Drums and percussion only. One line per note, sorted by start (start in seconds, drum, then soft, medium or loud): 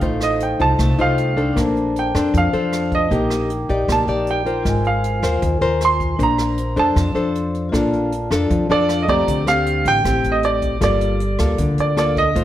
0.01 kick medium
0.01 closed hi-hat soft
0.21 cross-stick medium
0.21 closed hi-hat soft
0.40 closed hi-hat soft
0.60 closed hi-hat soft
0.79 kick medium
0.79 cross-stick medium
0.79 closed hi-hat soft
0.98 closed hi-hat soft
1.18 closed hi-hat soft
1.37 closed hi-hat soft
1.57 kick medium
1.57 cross-stick medium
1.57 closed hi-hat soft
1.77 closed hi-hat soft
1.96 closed hi-hat soft
2.15 cross-stick medium
2.15 closed hi-hat soft
2.34 kick medium
2.34 closed hi-hat soft
2.53 closed hi-hat soft
2.72 cross-stick soft
2.72 closed hi-hat soft
2.92 kick soft
2.92 closed hi-hat soft
3.11 kick medium
3.11 closed hi-hat soft
3.30 cross-stick medium
3.30 closed hi-hat soft
3.50 closed hi-hat soft
3.69 closed hi-hat soft
3.88 kick medium
3.88 cross-stick medium
3.88 closed hi-hat soft
4.08 closed hi-hat soft
4.27 closed hi-hat soft
4.46 closed hi-hat soft
4.65 kick medium
4.65 cross-stick soft
4.65 closed hi-hat soft
4.84 closed hi-hat soft
5.04 closed hi-hat soft
5.23 cross-stick medium
5.23 closed hi-hat soft
5.42 kick medium
5.42 closed hi-hat soft
5.61 closed hi-hat soft
5.81 cross-stick soft
5.81 closed hi-hat soft
6.00 kick medium
6.00 closed hi-hat soft
6.19 kick medium
6.19 closed hi-hat soft
6.38 cross-stick medium
6.38 closed hi-hat soft
6.58 closed hi-hat soft
6.76 closed hi-hat soft
6.96 kick medium
6.96 cross-stick medium
6.96 closed hi-hat soft
7.16 closed hi-hat soft
7.35 closed hi-hat soft
7.54 closed hi-hat soft
7.73 kick medium
7.73 cross-stick medium
7.73 closed hi-hat soft
7.93 closed hi-hat soft
8.12 closed hi-hat soft
8.31 cross-stick medium
8.31 closed hi-hat soft
8.50 kick medium
8.50 closed hi-hat soft
8.70 closed hi-hat soft
8.89 cross-stick medium
8.89 closed hi-hat soft
9.08 kick medium
9.08 closed hi-hat soft
9.28 kick soft
9.28 closed hi-hat medium
9.47 cross-stick medium
9.47 closed hi-hat soft
9.66 closed hi-hat soft
9.85 closed hi-hat soft
10.05 kick medium
10.05 cross-stick medium
10.05 closed hi-hat medium
10.24 closed hi-hat soft
10.43 closed hi-hat soft
10.62 kick soft
10.62 closed hi-hat soft
10.81 kick medium
10.81 cross-stick soft
10.81 closed hi-hat soft
11.01 closed hi-hat soft
11.20 closed hi-hat soft
11.39 kick soft
11.39 cross-stick medium
11.39 closed hi-hat soft
11.58 kick medium
11.58 closed hi-hat soft
11.78 closed hi-hat soft
11.97 cross-stick soft
11.97 closed hi-hat soft
12.16 kick soft
12.16 closed hi-hat soft
12.36 kick medium
12.36 closed hi-hat medium